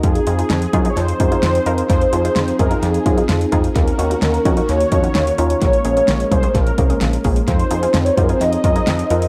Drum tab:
HH |xxxxxxxxxxxxxxxx|xxxxxxxxxxxxxxxx|xxxxxxxxxxxxxxxx|xxxxxxxxxxxxxxox|
SD |----o-------o---|----o-------o---|----o-------o---|----o-------o---|
BD |o-----o---o-----|o-----o---o---o-|o-----o---o-----|o-----o-o-o---o-|

HH |xxxxxxxxxxxxxxxx|
SD |----o-------o---|
BD |o-----o---o-----|